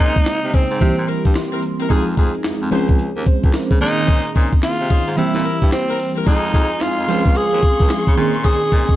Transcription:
Already playing: fm electric piano C#3 G#3 A#3 C4 D#4, tenor saxophone D#4
0.00 baritone saxophone A#2, horn section C#4 D#4 G#4 C5
0.16 kick, closed hi-hat
0.26 baritone saxophone C3, snare, clap, closed hi-hat, tambourine
0.44 baritone saxophone C3
0.54 tenor saxophone C4, horn section C#4 D#4 G#4 C5, kick, open hi-hat, tambourine
0.71 baritone saxophone G#2, closed hi-hat
0.80 baritone saxophone C3, fm electric piano E3 G3 A#3 C4 G4, kick, closed hi-hat, tambourine
0.98 baritone saxophone A#2
1.08 horn section C4 E4 A#4, closed hi-hat, tambourine
1.25 baritone saxophone G2, kick, closed hi-hat
1.35 fm electric piano C6, snare, clap, closed hi-hat, tambourine
1.52 horn section C4 E4 A#4
1.63 closed hi-hat, tambourine
1.79 horn section C4 E4 A#4, closed hi-hat
1.90 baritone saxophone F2, fm electric piano F3 G#3 C4 D#4 G#4, horn section D#4 F4 G#4, kick, closed hi-hat, tambourine
2.17 baritone saxophone F2, horn section D#4 F4 G#4, kick, closed hi-hat
2.35 closed hi-hat
2.44 baritone saxophone F2, snare, clap, closed hi-hat, tambourine
2.62 baritone saxophone F2
2.71 baritone saxophone C#2, fm electric piano F3 G#3 C4 C#4 G#4, horn section C#4 F4 C5, open hi-hat, tambourine
2.89 kick, closed hi-hat
2.99 closed hi-hat, tambourine
3.16 baritone saxophone D#2
3.26 fm electric piano C5, kick, closed hi-hat, tambourine
3.43 baritone saxophone C#2, kick, closed hi-hat
3.53 fm electric piano A#4, snare, clap, closed hi-hat, tambourine
3.71 baritone saxophone C#3, fm electric piano G#4, kick
3.80 baritone saxophone A#2, fm electric piano D#3 A#3 C4 C#4 G#4, tenor saxophone D#4, closed hi-hat, tambourine
3.98 closed hi-hat
4.08 horn section C#4 D#4 G#4 C5, kick, closed hi-hat, tambourine
4.35 baritone saxophone A#2, horn section C#4 D#4 G#4 C5, kick, closed hi-hat
4.53 kick, closed hi-hat
4.63 baritone saxophone C3, tenor saxophone F4, snare, clap, closed hi-hat, tambourine
4.80 baritone saxophone C3
4.90 horn section C#4 D#4 G#4 C5, kick, open hi-hat, tambourine
5.07 baritone saxophone G#2, closed hi-hat
5.16 baritone saxophone C3, fm electric piano E3 G3 A#3 C4 G4, tenor saxophone E4, closed hi-hat, tambourine
5.35 baritone saxophone A#2, snare
5.44 horn section C4 E4 A#4, closed hi-hat, tambourine
5.62 baritone saxophone G2, kick, closed hi-hat
5.72 tenor saxophone C4, snare, clap, closed hi-hat, tambourine
5.89 horn section C4 E4 A#4
5.99 open hi-hat, tambourine
6.16 horn section C4 E4 A#4, closed hi-hat
6.26 baritone saxophone F2, fm electric piano F3 G#3 C4 D#4 G#4, horn section D#4 F4 G#4, tenor saxophone D#4, string section F4 D#5 G#5 C6, kick, closed hi-hat, tambourine
6.54 baritone saxophone F2, horn section D#4 F4 G#4, kick, closed hi-hat
6.71 closed hi-hat
6.81 baritone saxophone F2, tenor saxophone F4, snare, clap, closed hi-hat, tambourine
6.98 baritone saxophone F2
7.08 baritone saxophone C#2, fm electric piano F3 G#3 C4 C#4 G#4, horn section C#4 F4 C5, string section G#4 F5 C#6, open hi-hat, tambourine
7.26 kick, closed hi-hat
7.36 tenor saxophone G#4, closed hi-hat, tambourine
7.53 baritone saxophone D#2
7.63 kick, closed hi-hat, tambourine
7.80 baritone saxophone C#2, kick, closed hi-hat
7.90 snare, clap, closed hi-hat, tambourine
8.07 baritone saxophone C#3, kick
8.16 baritone saxophone A#2, fm electric piano D#3 A#3 C4 C#4 G#4, string section D#5, closed hi-hat, tambourine
8.34 closed hi-hat
8.44 horn section C#4 D#4 G#4 C5, tenor saxophone G#4, kick, closed hi-hat, tambourine
8.72 baritone saxophone A#2, horn section C#4 D#4 G#4 C5, kick, closed hi-hat
8.89 kick, closed hi-hat

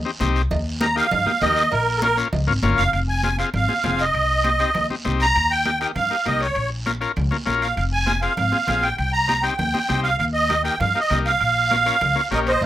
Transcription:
0.05 transistor combo organ C4 D#4 G4
0.20 upright bass C2, transistor combo organ C4 D#4 G4, cowbell, high conga, low conga, short guiro
0.36 short guiro
0.51 upright bass D#2, cowbell, high conga, low conga, long guiro
0.81 transistor combo organ A#3 D#4 G4, accordion A#5, cowbell, high conga, short guiro
0.96 transistor combo organ A#3 D#4 G4, accordion F5, short guiro
1.11 upright bass G2, cowbell, high conga, low conga, long guiro
1.26 transistor combo organ A#3 D#4 G4, high conga
1.42 upright bass D#2, transistor combo organ A#3 D#4 G4, accordion D#5, cowbell, high conga, low conga, low timbale, short guiro
1.56 short guiro
1.72 upright bass A#1, accordion A#4, cowbell, high conga, long guiro
1.97 accordion A4
2.02 transistor combo organ A#3 C#4 F4, accordion A#4, cowbell, high conga, short guiro
2.17 transistor combo organ A#3 C#4 F4, short guiro
2.33 upright bass C#2, cowbell, high conga, low conga, long guiro
2.47 upright bass G#1, transistor combo organ A#3 C#4 F4
2.63 upright bass G1, transistor combo organ A#3 C#4 F4, cowbell, high conga, low timbale, short guiro
2.77 upright bass F1, accordion F5, short guiro
2.92 upright bass F1, accordion F5, high timbale, long guiro
3.09 accordion G#5
3.23 transistor combo organ C4 F4 G#4, high conga, high timbale, short guiro
3.39 transistor combo organ C4 F4 G#4, accordion F5, high timbale, short guiro
3.54 upright bass G#1, accordion F5, low conga, high timbale, long guiro
3.68 transistor combo organ C4 F4 G#4, high conga
3.84 upright bass F1, transistor combo organ C4 F4 G#4, high conga, low conga, high timbale, low timbale, short guiro
3.99 accordion D#5, high timbale, short guiro
4.13 upright bass C2, high timbale, long guiro
4.44 transistor combo organ C4 D#4 G4, high conga, high timbale, short guiro
4.59 transistor combo organ C4 D#4 G4, high timbale, short guiro
4.74 upright bass D#2, low conga, high timbale, long guiro
4.90 transistor combo organ C4 D#4 G4, high conga
5.05 upright bass C2, transistor combo organ C4 D#4 G4, high conga, high timbale, low timbale, short guiro
5.20 accordion A#5, high timbale, short guiro
5.35 upright bass D#2, high timbale, long guiro
5.51 accordion G5
5.65 transistor combo organ A#3 D#4 G4, high conga, high timbale, short guiro
5.80 transistor combo organ A#3 D#4 G4, accordion G5, high timbale, short guiro
5.96 upright bass G2, accordion F5, low conga, high timbale, long guiro
6.11 transistor combo organ A#3 D#4 G4
6.26 upright bass C2, transistor combo organ A#3 D#4 G4, accordion D#5, high conga, high timbale, short guiro
6.40 accordion C#5, high timbale, short guiro
6.55 upright bass A#1, high timbale, long guiro
6.86 transistor combo organ C#4 F4 A#4, high conga, high timbale, short guiro
7.01 transistor combo organ C#4 F4 A#4, high timbale, short guiro
7.16 upright bass C#2, low conga, high timbale, long guiro
7.31 transistor combo organ C#4 F4 A#4, high conga
7.46 upright bass A#1, transistor combo organ C#4 F4 A#4, high conga, high timbale, low timbale, short guiro
7.61 accordion F5, high timbale, short guiro
7.76 upright bass F1, accordion F5, high timbale, long guiro
7.93 accordion G#5
8.06 transistor combo organ C4 F4 G#4, high conga, high timbale, short guiro
8.21 transistor combo organ C4 F4 G#4, accordion F5, high timbale, short guiro
8.36 upright bass G#1, accordion F5, low conga, high timbale, long guiro
8.52 transistor combo organ C4 F4 G#4, high conga
8.67 upright bass A#1, transistor combo organ C4 F4 G#4, high conga, low conga, high timbale, low timbale, short guiro
8.82 accordion G5, high timbale, short guiro
8.98 upright bass C2, accordion G5, high timbale, long guiro
9.13 accordion A#5
9.28 transistor combo organ C4 D#4 G4, high conga, high timbale, short guiro
9.42 transistor combo organ C4 D#4 G4, accordion G5, high timbale, short guiro
9.57 upright bass D#2, accordion G5, low conga, high timbale, long guiro
9.74 transistor combo organ C4 D#4 G4, high conga
9.88 upright bass C2, transistor combo organ C4 D#4 G4, high conga, high timbale, low timbale, short guiro
10.03 accordion F5, high timbale, short guiro
10.18 upright bass D#2, accordion F5, high timbale, long guiro
10.33 accordion D#5
10.49 transistor combo organ A#3 D#4 G4, high conga, high timbale, short guiro
10.64 transistor combo organ A#3 D#4 G4, accordion G5, high timbale, short guiro
10.80 upright bass G2, accordion F5, low conga, high timbale, long guiro
10.95 transistor combo organ A#3 D#4 G4
11.00 accordion D#5
11.10 upright bass C2, transistor combo organ A#3 D#4 G4, high conga, low conga, high timbale, short guiro
11.26 accordion F5, high timbale, short guiro
11.41 upright bass A#1, high timbale, long guiro
11.71 transistor combo organ A#3 C#4 F4, high conga, high timbale, short guiro
11.86 transistor combo organ A#3 C#4 F4, high timbale, short guiro
12.01 upright bass C#2, low conga, high timbale, long guiro
12.15 transistor combo organ A#3 C#4 F4
12.31 upright bass A#1, transistor combo organ A#3 C#4 G4, accordion A#4 D#5, high conga, high timbale, low timbale, short guiro
12.47 accordion C5 D#5, high timbale, short guiro
12.61 upright bass F1, cowbell, high conga, long guiro

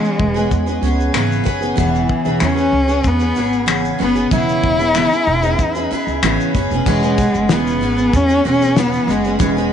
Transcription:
Already playing: steel-string acoustic guitar C#3 E3 B3 C#4 G#4 B4, cello G#3
0.04 shaker
0.19 upright bass E1, kick
0.34 steel-string acoustic guitar B3 C#4 G#4 B4, shaker
0.51 upright bass E2, kick, shaker
0.66 steel-string acoustic guitar B3 C#4 G#4 B4, shaker
0.82 upright bass C#2, steel-string acoustic guitar B3 C#4 B4, shaker
0.86 steel-string acoustic guitar G#4
1.00 shaker
1.14 upright bass G#1, steel-string acoustic guitar C#3 E3 B3 C#4 G#4 B4, finger snap, shaker
1.32 shaker
1.44 upright bass F#1, steel-string acoustic guitar B3 C#4 G#4 B4, kick, shaker
1.61 steel-string acoustic guitar B3 C#4 G#4 B4, shaker
1.76 upright bass E1, steel-string acoustic guitar C#3 E3 B3 C#4 G#4 B4, kick, shaker
1.80 cello E3
1.95 shaker
2.09 kick
2.25 upright bass E1, steel-string acoustic guitar B3 C#4 G#4 B4, shaker
2.40 upright bass E2, steel-string acoustic guitar C#3 E3 B3 C#4 G#4 B4, finger snap, shaker
2.45 cello C#4
2.55 steel-string acoustic guitar B3 C#4 G#4 B4, shaker
2.72 upright bass C#2
2.88 steel-string acoustic guitar B3 C#4 G#4 B4, shaker
3.04 upright bass E2, cello B3, kick, shaker
3.19 steel-string acoustic guitar B3 C#4 G#4 B4, shaker
3.35 upright bass G#1, steel-string acoustic guitar B3 C#4 G#4 B4, shaker
3.53 shaker
3.66 steel-string acoustic guitar C#3 E3 B3 C#4 G#4 B4, finger snap, shaker
3.85 shaker
3.99 upright bass F#1, steel-string acoustic guitar B3 C#4 G#4 B4, cello B3
4.15 steel-string acoustic guitar B3 C#4 G#4 B4, shaker
4.31 upright bass E1, steel-string acoustic guitar C#3 E3 B3 C#4 G#4 B4, cello E4, kick, shaker
4.49 shaker
4.63 upright bass E1, kick
4.79 steel-string acoustic guitar B3 C#4 G#4 B4, shaker
4.94 steel-string acoustic guitar C#3 E3 B3 C#4 G#4 B4, finger snap, shaker
5.11 steel-string acoustic guitar B3 C#4 G#4 B4, shaker
5.27 upright bass E1
5.42 steel-string acoustic guitar B3 C#4 G#4 B4, shaker
5.59 upright bass E2, kick, shaker
5.75 steel-string acoustic guitar B3 C#4 G#4 B4, shaker
5.91 steel-string acoustic guitar B3 C#4 G#4 B4, muted upright bass stroke
6.07 upright bass C#2, shaker
6.22 upright bass G#1, steel-string acoustic guitar C#3 E3 B3 C#4 G#4 B4, finger snap, shaker
6.40 shaker
6.55 upright bass F#1, steel-string acoustic guitar B3 C#4 G#4 B4, kick, shaker
6.71 upright bass E1, steel-string acoustic guitar B3 C#4 G#4 B4, shaker
6.86 upright bass E1, steel-string acoustic guitar C#3 E3 B3 C#4 G#4 B4, cello G#3, kick, crash
7.03 steel-string acoustic guitar B3 C#4 G#4 B4, shaker
7.18 steel-string acoustic guitar B3 C#4 G#4 B4, kick, shaker
7.34 upright bass F#1, shaker
7.49 upright bass E1, steel-string acoustic guitar C#3 E3 B3 C#4 G#4 B4, cello B3, snare, shaker
7.67 shaker
7.81 upright bass G#1, steel-string acoustic guitar B3 C#4 G#4 B4
7.97 steel-string acoustic guitar B3 C#4 G#4 B4, shaker
8.13 upright bass E2, cello C#4, kick, shaker
8.28 steel-string acoustic guitar B3 C#4 G#4 B4, shaker
8.44 upright bass E1, steel-string acoustic guitar B3 C#4 G#4 B4
8.49 cello C#4
8.61 steel-string acoustic guitar B3 C#4 G#4 B4, shaker
8.77 steel-string acoustic guitar C#3 E3 B3 C#4 G#4 B4, cello B3, snare, shaker
8.93 shaker
9.07 upright bass F#1, cello G#3, steel-string acoustic guitar B3 C#4 G#4 B4, snare, shaker
9.24 steel-string acoustic guitar B3 C#4 G#4 B4, shaker
9.39 upright bass E1, steel-string acoustic guitar C#3 E3 B3 C#4 G#4 B4, cello G#3, kick, shaker
9.57 steel-string acoustic guitar B3 C#4 G#4 B4, shaker

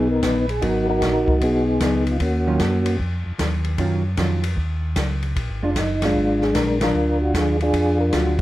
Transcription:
Already playing: tonewheel organ B1 B3 D#4
0.11 tonewheel organ A#4
0.22 tonewheel organ A#1 B4, kick, snare, hi-hat pedal, ride
0.49 tonewheel organ G#4, ride
0.61 tonewheel organ G#1 D#4 F#4 A#4, hollow-body jazz guitar F#3 B3 D#4, kick, ride
0.89 tonewheel organ D#4 F#4 A#4
1.01 tonewheel organ A#1, kick, snare, hi-hat pedal, ride
1.27 tonewheel organ A#1, kick
1.41 tonewheel organ B1 B3 D#4 G#4, kick, ride
1.80 tonewheel organ C#2, kick, snare, hi-hat pedal, ride
2.07 ride
2.11 tonewheel organ F4
2.20 tonewheel organ D#2 A#3 C#4 F#4, kick, ride
2.47 hollow-body jazz guitar D#3 F#3 C#4 F4
2.60 tonewheel organ F#2, kick, snare, hi-hat pedal, ride
2.86 ride
2.99 tonewheel organ F2, kick
3.26 tonewheel organ F2
3.39 tonewheel organ D#2, kick, snare, hi-hat pedal, ride
3.65 ride
3.78 tonewheel organ F#2, hollow-body jazz guitar D#3 F#3 C#4 F4, kick, ride
4.17 tonewheel organ F2, hollow-body jazz guitar D#3 F#3 C#4 F4, kick, snare, hi-hat pedal, ride
4.44 ride
4.57 tonewheel organ D#2, kick
4.96 tonewheel organ C#2, kick, snare, hi-hat pedal, ride
5.23 ride
5.36 tonewheel organ A#1, kick, ride
5.49 tonewheel organ G#1
5.62 tonewheel organ F1 D4, hollow-body jazz guitar G#3 D4 F4
5.75 tonewheel organ F#1 D#4, kick, snare, hi-hat pedal, ride
6.02 tonewheel organ G#3 D4 F4, snare, ride
6.15 tonewheel organ G#1, kick
6.41 tonewheel organ G#4, snare
6.54 tonewheel organ A#1 A#4, kick, snare, hi-hat pedal, ride
6.81 tonewheel organ D4 F4 A#4, snare, ride
6.94 tonewheel organ D2
7.21 tonewheel organ F#4
7.34 tonewheel organ D#2 G#4, kick, snare, hi-hat pedal, ride
7.61 tonewheel organ D4 F4 G#4, ride
7.73 tonewheel organ F2, kick, ride
8.00 tonewheel organ A#4
8.13 tonewheel organ D2 F#4, hollow-body jazz guitar G#3 D4 F4, kick, snare, hi-hat pedal, ride

